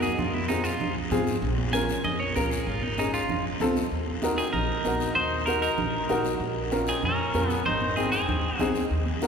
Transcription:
0.00 0.11 F#2 loud
0.00 0.19 G#4 medium
0.00 high conga medium
0.00 short guiro medium
0.18 0.68 F2 loud
0.18 0.34 F4 medium
0.18 high conga soft
0.18 low conga medium
0.18 long guiro medium
0.34 0.48 E4 medium
0.34 high conga medium
0.48 0.71 C4 medium
0.48 0.64 D#4 medium
0.48 0.71 F4 medium
0.48 0.71 G#4 medium
0.48 high conga medium
0.48 short guiro medium
0.64 0.94 F4 loud
0.64 short guiro medium
0.80 1.05 C2 medium
0.80 high conga soft
0.80 low conga medium
0.80 long guiro medium
1.11 1.36 G#2 medium
1.11 1.33 C4 medium
1.11 1.33 F4 medium
1.11 1.33 G#4 loud
1.11 high conga medium
1.11 low conga medium
1.11 short guiro medium
1.27 short guiro medium
1.42 1.92 A#1 loud
1.42 high conga soft
1.42 long guiro medium
1.58 high conga medium
1.73 1.95 C#4 medium
1.73 1.96 F4 medium
1.73 1.96 A#4 medium
1.73 2.03 G#5 loud
1.73 high conga medium
1.73 short guiro medium
1.89 short guiro medium
2.04 2.29 F2 medium
2.04 2.20 D#5 medium
2.04 high conga soft
2.04 low conga medium
2.04 long guiro medium
2.20 2.35 C#5 medium
2.36 2.60 C#2 medium
2.36 2.57 C#4 medium
2.36 2.58 F4 medium
2.36 2.50 A#4 medium
2.36 2.58 A#4 medium
2.36 high conga medium
2.36 short guiro medium
2.50 2.67 G#4 medium
2.50 short guiro medium
2.67 3.16 G#1 loud
2.67 2.83 F4 medium
2.67 high conga soft
2.67 long guiro medium
2.83 2.98 D#4 medium
2.83 high conga medium
2.98 3.20 C#4 medium
2.98 3.20 D#4 medium
2.98 3.13 D#4 medium
2.98 3.20 G#4 medium
2.98 high conga medium
2.98 short guiro medium
3.14 3.44 F4 loud
3.14 short guiro medium
3.29 3.54 F1 medium
3.29 high conga soft
3.29 low conga medium
3.29 long guiro medium
3.60 3.85 C#2 medium
3.60 3.82 C4 loud
3.60 3.82 F4 medium
3.60 3.83 A4 loud
3.60 high conga medium
3.60 low conga medium
3.60 short guiro medium
3.76 high conga medium
3.76 short guiro medium
3.91 4.41 D#2 medium
3.91 high conga soft
3.91 long guiro medium
4.07 high conga medium
4.22 4.45 D#4 medium
4.22 4.45 F#4 medium
4.22 4.45 A#4 medium
4.22 high conga medium
4.22 short guiro medium
4.38 4.52 C4 medium
4.38 4.52 G#4 medium
4.38 short guiro medium
4.53 4.78 A#1 medium
4.53 5.12 D#4 medium
4.53 5.15 A#4 medium
4.53 high conga soft
4.53 low conga medium
4.53 long guiro medium
4.85 5.10 A#1 medium
4.85 5.07 D#4 medium
4.85 5.07 F#4 medium
4.85 5.07 A#4 medium
4.85 high conga medium
4.85 short guiro medium
5.00 high conga medium
5.00 short guiro medium
5.14 5.66 D#2 loud
5.14 5.44 D#4 loud
5.14 5.45 C5 loud
5.14 high conga soft
5.14 long guiro medium
5.45 5.61 D#4 medium
5.45 5.69 D#4 medium
5.45 5.69 F#4 medium
5.45 5.61 A#4 medium
5.45 5.69 A#4 medium
5.45 high conga medium
5.45 short guiro medium
5.62 6.21 D#4 medium
5.62 6.21 A#4 medium
5.62 short guiro medium
5.78 6.03 A#1 medium
5.78 high conga soft
5.78 low conga medium
5.78 long guiro medium
6.09 6.34 A#1 medium
6.09 6.31 D#4 medium
6.09 6.31 F#4 medium
6.09 6.32 A#4 loud
6.09 high conga medium
6.09 short guiro medium
6.25 short guiro medium
6.40 6.90 A#1 loud
6.40 high conga soft
6.40 long guiro medium
6.71 6.94 C#4 medium
6.71 6.94 F4 medium
6.71 6.94 A#4 medium
6.71 high conga medium
6.71 short guiro medium
6.87 7.03 C4 medium
6.87 7.03 G#4 medium
6.87 short guiro medium
7.02 7.28 F2 medium
7.02 7.48 C#4 medium
7.02 7.53 A#4 medium
7.02 high conga soft
7.02 low conga medium
7.02 long guiro medium
7.34 7.59 F2 medium
7.34 7.56 C#4 medium
7.34 7.56 F4 medium
7.34 7.57 A#4 medium
7.34 high conga medium
7.34 short guiro medium
7.48 7.62 B3 medium
7.48 high conga medium
7.48 short guiro medium
7.53 7.65 G#4 medium
7.65 8.16 G#1 loud
7.65 7.95 D#4 loud
7.65 7.96 C5 loud
7.65 high conga soft
7.65 low conga medium
7.65 long guiro medium
7.81 high conga medium
7.96 8.19 C4 medium
7.96 8.12 C4 medium
7.96 8.19 D#4 medium
7.96 8.11 G#4 medium
7.96 8.19 G#4 medium
7.96 high conga medium
7.96 short guiro medium
8.12 8.57 C4 medium
8.12 8.57 G#4 medium
8.12 short guiro medium
8.28 8.53 D#2 medium
8.28 high conga soft
8.28 low conga medium
8.28 long guiro medium
8.57 8.73 C2 medium
8.57 8.71 A#3 medium
8.57 8.81 C4 loud
8.57 8.82 D#4 medium
8.57 8.71 F#4 medium
8.57 8.82 G#4 loud
8.57 high conga medium
8.57 low conga medium
8.57 short guiro medium
8.75 8.89 D#2 medium
8.75 high conga medium
8.75 short guiro medium
8.91 9.27 D#2 loud
8.91 high conga soft
8.91 long guiro medium
9.06 high conga medium
9.22 9.27 D#4 medium
9.22 9.27 F#4 medium
9.22 9.27 A#4 medium
9.22 high conga medium
9.22 short guiro medium

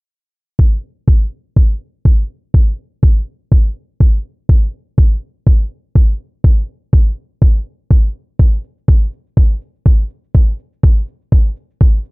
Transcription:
0.59 kick loud
1.08 kick loud
1.56 kick loud
2.05 kick loud
2.54 kick loud
3.03 kick loud
3.52 kick loud
4.00 kick loud
4.49 kick loud
4.98 kick loud
5.47 kick loud
5.95 kick loud
6.44 kick loud
6.93 kick loud
7.42 kick loud
7.91 kick loud
8.39 kick loud
8.39 shaker soft
8.64 shaker medium
8.78 shaker soft
8.88 kick loud
8.88 shaker soft
9.12 shaker medium
9.27 shaker soft
9.37 kick loud
9.37 shaker soft
9.61 shaker medium
9.86 kick loud
9.86 shaker soft
10.10 shaker medium
10.24 shaker soft
10.34 kick loud
10.34 shaker soft
10.59 shaker medium
10.73 shaker soft
10.83 kick loud
10.83 shaker soft
11.07 shaker medium
11.32 kick loud
11.32 shaker soft
11.56 shaker medium
11.70 shaker soft
11.81 kick loud
11.81 shaker soft
12.05 shaker medium

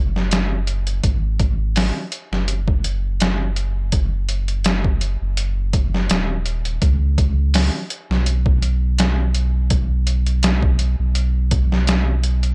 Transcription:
0.00 1.01 F#1 medium
0.16 snare soft
0.31 snare loud
0.31 closed hi-hat medium
0.67 closed hi-hat medium
0.87 closed hi-hat soft
1.04 1.92 G#1 medium
1.04 kick loud
1.04 closed hi-hat medium
1.40 kick medium
1.40 closed hi-hat medium
1.76 snare loud
1.76 open hi-hat medium
2.12 closed hi-hat medium
2.32 5.17 F#1 medium
2.32 snare soft
2.48 closed hi-hat medium
2.68 kick medium
2.84 closed hi-hat medium
3.20 snare loud
3.20 closed hi-hat medium
3.56 closed hi-hat medium
3.92 kick loud
3.92 closed hi-hat medium
4.29 closed hi-hat medium
4.48 closed hi-hat soft
4.64 snare loud
4.64 closed hi-hat medium
4.84 kick medium
5.01 closed hi-hat medium
5.21 6.10 F#1 medium
5.37 closed hi-hat medium
5.73 kick medium
5.73 closed hi-hat medium
5.94 snare soft
6.10 6.79 D#1 medium
6.10 snare loud
6.10 closed hi-hat medium
6.46 closed hi-hat medium
6.65 closed hi-hat soft
6.82 7.70 C#2 medium
6.82 kick loud
6.82 closed hi-hat medium
7.18 kick medium
7.18 closed hi-hat medium
7.54 snare loud
7.54 open hi-hat medium
7.90 closed hi-hat medium
8.10 10.95 B1 medium
8.10 snare soft
8.26 closed hi-hat medium
8.46 kick medium
8.62 closed hi-hat medium
8.98 snare loud
8.98 closed hi-hat medium
9.35 closed hi-hat medium
9.70 kick medium
9.70 closed hi-hat medium
10.07 closed hi-hat medium
10.27 closed hi-hat soft
10.43 snare loud
10.43 closed hi-hat medium
10.63 kick medium
10.79 closed hi-hat medium
10.99 12.54 B1 medium
11.15 closed hi-hat medium
11.51 kick medium
11.51 closed hi-hat medium
11.72 snare soft
11.87 snare loud
11.87 closed hi-hat medium
12.24 closed hi-hat medium
12.43 closed hi-hat soft

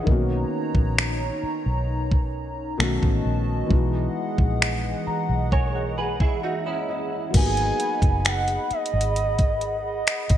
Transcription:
0.00 2.74 D#3 medium
0.00 0.28 B4 medium
0.00 0.27 D#5 medium
0.05 0.43 B1 loud
0.05 2.75 A#3 medium
0.05 2.76 B3 medium
0.05 2.77 D#4 medium
0.05 2.77 C#5 medium
0.05 2.77 A#5 medium
0.05 kick loud
0.09 2.77 C#4 medium
0.09 2.78 F#4 medium
0.75 1.30 A#1 medium
0.75 kick medium
0.98 finger snap loud
1.43 muted fingered electric bass stroke soft
1.66 2.76 B1 medium
2.12 kick medium
2.78 2.98 B1 loud
2.78 3.70 D#3 medium
2.78 3.70 A3 medium
2.78 3.69 B3 medium
2.78 3.71 C#4 medium
2.78 3.70 F#4 medium
2.78 7.30 D#5 medium
2.78 3.70 A5 medium
2.78 finger snap loud
2.82 3.72 F#4 medium
3.03 3.21 A1 medium
3.03 kick loud
3.25 3.62 A#1 medium
3.66 7.28 E3 medium
3.66 7.29 G#3 medium
3.71 4.07 B1 loud
3.71 7.31 E3 medium
3.71 7.30 B3 medium
3.71 7.31 D#4 medium
3.71 7.31 G#4 medium
3.71 7.31 F#5 medium
3.71 kick loud
3.75 7.32 F#4 medium
4.38 4.93 A#1 medium
4.38 kick medium
4.62 finger snap loud
5.07 5.49 A#5 medium
5.07 muted fingered electric bass stroke soft
5.29 6.39 B1 medium
5.52 5.96 A#4 medium
5.52 5.96 C#5 medium
5.52 5.74 G#5 medium
5.52 kick medium
5.75 5.96 F#5 medium
5.98 6.19 G#4 medium
5.98 6.19 B4 medium
5.98 6.40 G#5 medium
6.20 6.42 E4 medium
6.20 6.42 G#4 medium
6.20 kick medium
6.43 6.65 D#4 medium
6.43 6.65 F#4 medium
6.43 6.64 E5 medium
6.66 7.31 C#4 medium
6.66 7.31 E4 medium
6.66 6.87 D#5 medium
6.89 7.31 D#5 medium
7.30 10.38 F#3 medium
7.30 10.38 A#3 medium
7.30 10.38 G#4 medium
7.30 10.38 D#5 medium
7.30 10.38 F#5 medium
7.30 10.38 B5 medium
7.30 closed hi-hat medium
7.30 crash medium
7.34 7.71 G#1 loud
7.34 10.38 B3 medium
7.34 10.38 D#4 medium
7.34 8.20 G#5 loud
7.34 kick loud
7.39 7.43 G4 medium
7.45 10.38 G#4 medium
7.57 closed hi-hat soft
7.80 closed hi-hat medium
8.02 8.57 F#1 medium
8.02 kick medium
8.02 closed hi-hat soft
8.20 8.28 G#5 medium
8.25 8.71 F#5 loud
8.25 finger snap loud
8.25 closed hi-hat medium
8.48 closed hi-hat soft
8.71 9.81 D#5 loud
8.71 muted fingered electric bass stroke soft
8.71 closed hi-hat soft
8.86 closed hi-hat medium
8.93 10.03 G#1 medium
9.01 closed hi-hat medium
9.16 closed hi-hat medium
9.39 kick medium
9.39 closed hi-hat medium
9.61 closed hi-hat medium
9.86 10.38 D#5 medium
10.07 finger snap loud
10.07 closed hi-hat medium
10.29 10.38 G#1 medium
10.29 kick loud
10.29 closed hi-hat medium

